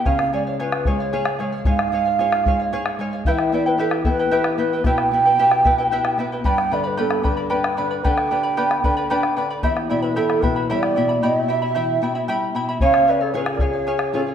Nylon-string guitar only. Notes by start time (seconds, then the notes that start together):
0.07 C#3
0.33 G#3
0.60 F4
0.87 G#3
1.13 G#4
1.40 G#3
1.65 G#2
1.92 G#3
2.19 F4
2.45 G#3
2.73 G#4
2.99 G#3
3.26 E3
3.52 B3
3.78 G4
4.05 B3
4.31 G4
4.58 B3
4.85 B2
5.12 B3
5.39 G4
5.65 B3
5.92 G4
6.18 B3
6.44 G2
6.72 D3
6.99 B3
7.25 D3
7.52 D4
7.78 D3
8.06 D3
8.32 G4
8.58 B3
8.84 D3
9.11 D4
9.37 D3
9.63 E2
9.90 B2
10.17 E3
10.43 B2
10.71 G3
10.97 B2
11.24 B2
11.50 G4
11.76 E3
12.02 B2
12.28 G3
12.55 B2
12.82 C#3
13.34 C#4 F4 G#4
14.13 C#4 F4 G#4